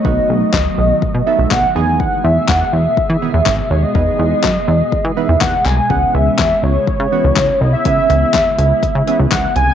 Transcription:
<<
  \new Staff \with { instrumentName = "Soft synth lead" } { \time 4/4 \key cis \minor \tempo 4 = 123 dis''2~ dis''8 e''8 fis''8 gis''8 | fis''8 e''8 fis''8 e''2 cis''16 dis''16~ | dis''2~ dis''8 e''8 fis''8 gis''8 | fis''8 e''8 e''8 cis''2 dis''16 e''16~ |
e''2~ e''8 e''8 fis''8 gis''8 | }
  \new Staff \with { instrumentName = "Synth keys" } { \time 4/4 \key cis \minor <fis b dis' fis'>4 r4. <fis b dis' a'>4 <e b dis' gis'>8~ | <e b dis' gis'>4 r4. <dis e b gis'>4 r8 | <e b dis' gis'>4 r4. <e b dis' b'>4 r8 | <e b cis' gis'>4 r4. <e b cis' fis'>4 r8 |
<e b cis' gis'>4 r4. <e b cis' gis'>4 r8 | }
  \new Staff \with { instrumentName = "Ambient pad" } { \time 4/4 \key cis \minor << { <dis fis b fis'>2.~ <dis fis b fis'>8 <b, b gis'>8~ | <b, b gis'>1~ | <b, b gis'>1 | <cis b e'>1~ |
<cis b e'>1 | } \\ { a2.~ a8 gis8~ | gis1~ | gis1~ | gis1~ |
gis1 | } >> }
  \new Staff \with { instrumentName = "Analog synth bass" } { \clef bass \time 4/4 \key cis \minor b,,8 b,,8 cis,8 b,,8 b,16 b,16 r16 b,,16 b,,8 e,8~ | e,8 e,8 e,8 e,8 e16 e16 r16 e,16 gis,,8 dis,8 | e,8 e,8 fis,8 e,8 e16 e16 r16 e,16 e,8 bis,,8 | cis,8 cis,8 e,8 cis,8 cis16 cis16 r16 cis,16 cis,8 bis,,8 |
cis,8 cis,8 e,8 cis,8 cis16 cis16 r16 cis,16 cis,8 bis,,8 | }
  \new DrumStaff \with { instrumentName = "Drums" } \drummode { \time 4/4 bd4 <hc bd sn>4 bd4 <hc bd sn>4 | bd4 <hc bd sn>4 bd4 <hc bd sn>4 | bd4 <hc bd sn>4 bd4 <hc bd sn>8 hc8 | bd4 <hc bd sn>4 bd4 <hc bd sn>4 |
<hh bd>8 hh8 <hc hh bd sn>8 hh8 <hh bd>8 hh8 <hc hh bd sn>8 hh8 | }
>>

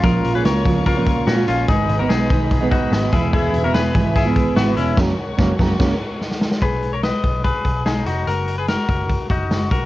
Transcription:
<<
  \new Staff \with { instrumentName = "String section" } { \time 4/4 \key fis \major \tempo 4 = 146 << { <ais' cis'' cis'''>1 | <gis' b' b''>1~ | <gis' b' b''>1 | <ais' cis'' cis'''>1 |
r1 | r1 | } \\ { eis''1 | dis''2.~ dis''8 e''8~ | e''1 | fis''1 |
r1 | r1 | } >> }
  \new Staff \with { instrumentName = "Clean electric guitar" } { \time 4/4 \key fis \major <eis' ais'>8. <gis' b'>16 <ais' cis''>4 <eis' ais'>4 <cis' fis'>8 <cis' eis'>8 | <dis' gis'>8. <fis' ais'>16 <dis' gis'>4. <dis' fis'>4 <e' gis'>8 | <e' gis'>8. <fis' ais'>16 <gis' b'>4 <e' gis'>4 <b fis'>8 <cis' e'>8 | r1 |
<gis' b'>8. <ais' cis''>16 <b' dis''>4 <gis' b'>4 <dis' gis'>8 <dis' fis'>8 | <fis' ais'>8. <gis' b'>16 <fis' ais'>4. <dis' fis'>4 <fis' ais'>8 | }
  \new Staff \with { instrumentName = "Steel-string acoustic guitar" } { \time 4/4 \key fis \major <eis ais cis' eis'>8. <ais cis' eis'>8. <eis ais cis' eis'>8. <ais, eis ais cis' eis'>4 <ais cis' eis'>8. | <dis gis b dis'>8. <gis b dis'>8. <dis gis b dis'>8. <gis, dis gis b dis'>4 <gis b dis'>16 <e gis b e'>8~ | <e gis b e'>8. <gis b e'>8. <e gis b e'>8. <e gis b e'>4 <gis b e'>8. | <cis fis ais cis'>8 r8 <fis ais cis'>8 <cis fis ais cis'>8 <fis, cis fis ais cis'>8 r4. |
r1 | r1 | }
  \new Staff \with { instrumentName = "Picked electric bass" } { \clef bass \time 4/4 \key fis \major ais,,8 ais,,8 cis,8 cis,4. ais,8 ais,,8 | gis,,8 gis,,8 b,,8 b,,4. gis,,8 e,,8~ | e,,8 e,,8 e,,8 gis,,4. gis,,8 e,,8 | fis,,8 r8 fis,,8 fis,,8 fis,,8 r4. |
b,,4~ b,,16 r16 b,,8. r16 b,,8 b,,8 eis,,8 | fis,,4~ fis,,16 r16 fis,,8. r16 fis,,8 fis,,8 b,,8 | }
  \new DrumStaff \with { instrumentName = "Drums" } \drummode { \time 4/4 <hh bd>8 hh8 <hh sn>8 <hh bd>8 <hh bd>8 <hh bd>8 <hh sn>8 hh8 | <hh bd>8 hh8 <hh sn>8 <hh bd>8 <hh bd>8 <hh bd>8 <hh sn>8 <hh bd>8 | <hh bd>8 hh8 <hh sn>8 <hh bd>8 <hh bd sn>8 <hh bd>8 <hh sn>8 hh8 | <cymc bd sn>4 <bd sn>8 <bd sn>8 <cymc bd sn>4 sn16 sn16 sn16 sn16 |
<hh bd>8 hh8 <hh sn>8 <hh bd>8 <hh bd>8 <hh bd>8 <hh sn>8 hh8 | hh8 hh8 <hh sn>8 <hh bd>8 <hh bd>8 <hh bd>8 <hh sn>8 <hh bd>8 | }
>>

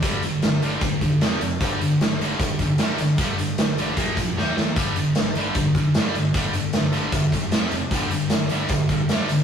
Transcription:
<<
  \new Staff \with { instrumentName = "Distorted electric guitar" } { \clef bass \time 4/4 \key g \minor \tempo 4 = 152 <g, d g>8 <g, d>8 <g, d>8 <g, d g>8 <g, d>8 <g, d>8 <f, c f>8 <f, c>8 | <g, d g>8 <g, d>8 <g, d>8 <g, d g>8 <g, d>8 <g, d>8 <g, d g>8 <g, d>8 | <g, d g>8 <g, d>8 <g, d>8 <g, d g>8 <bes, f bes>8 <bes, f>8 <ees bes ees'>8 <ees bes>8 | <g, d g>8 <g, d>8 <g, d>8 <g, d g>8 <g, d>8 <g, d>8 <g, d g>8 <g, d>8 |
<g, d g>8 <g, d>8 <g, d>8 <g, d g>8 <g, d>8 <g, d>8 <f, c f>8 <f, c>8 | <g, d g>8 <g, d>8 <g, d>8 <g, d g>8 <g, d>8 <g, d>8 <g, d g>8 <g, d>8 | }
  \new Staff \with { instrumentName = "Picked electric bass" } { \clef bass \time 4/4 \key g \minor g,,8 g,,8 g,,8 g,,8 g,,8 ees,8 f,,8 f,,8 | g,,8 g,,8 g,,8 g,,8 g,,8 g,,8 g,8 g,,8 | g,,8 g,,8 g,,8 a,,8 bes,,8 bes,,8 ees,8 a,8 | g,,8 g,,8 g,,8 g,,8 g,,8 g,,8 g,8 g,,8 |
g,,8 g,,8 g,,8 g,,8 g,,8 g,,8 f,,8 f,,8 | g,,8 g,,8 g,,8 g,,8 g,,8 g,,8 g,8 g,,8 | }
  \new DrumStaff \with { instrumentName = "Drums" } \drummode { \time 4/4 <hh bd>8 hh8 <hh sn>8 hh8 <hh bd>8 <hh bd>8 <hh sn>8 hh8 | <hh bd>8 hh8 <hh sn>8 hh8 <hh bd>8 <hh bd>8 <hh sn>8 hh8 | <hh bd>8 hh8 <hh sn>8 hh8 <hh bd>8 <hh bd>8 sn8 sn8 | <hh bd>8 hh8 <hh sn>8 hh8 <hh bd>8 <hh bd>8 <hh sn>8 hh8 |
<hh bd>8 hh8 <hh sn>8 hh8 <hh bd>8 <hh bd>8 <hh sn>8 hh8 | <hh bd>8 hh8 <hh sn>8 hh8 <hh bd>8 <hh bd>8 <hh sn>8 hh8 | }
>>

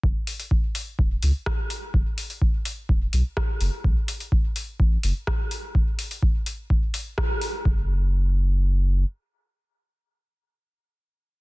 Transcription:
<<
  \new Staff \with { instrumentName = "Sub bass" } { \clef bass \time 4/4 \key fis \minor \tempo 4 = 126 fis,,8 r4. e,,8 cis,8 r4 | fis,,8 r4. e,,8 b,,8 r8 fis,,8 | b,,8 r4. a,,8 fis,,8 r4 | r1 |
fis,,2. r4 | r1 | }
  \new DrumStaff \with { instrumentName = "Drums" } \drummode { \time 4/4 bd8 hho16 hho16 bd8 hho8 bd8 hho8 <bd ss>8 hho8 | bd8 hho16 hho16 bd8 hho8 bd8 hho8 <bd ss>8 hho8 | bd8 hho16 hho16 bd8 hho8 bd8 hho8 <bd ss>8 hho8 | bd8 hho16 hho16 bd8 hho8 bd8 hho8 <bd ss>8 hho8 |
bd4 r4 r4 r4 | r4 r4 r4 r4 | }
>>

